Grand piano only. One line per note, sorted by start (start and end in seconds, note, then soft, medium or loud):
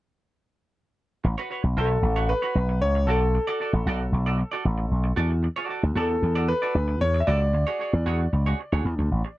1.78 2.31 A4 medium
2.29 2.78 B4 medium
2.82 3.09 C#5 medium
3.07 5.13 A4 medium
5.97 6.51 A4 medium
6.48 6.97 B4 medium
7.01 7.19 C#5 loud
7.20 7.27 E5 medium
7.27 9.34 D5 medium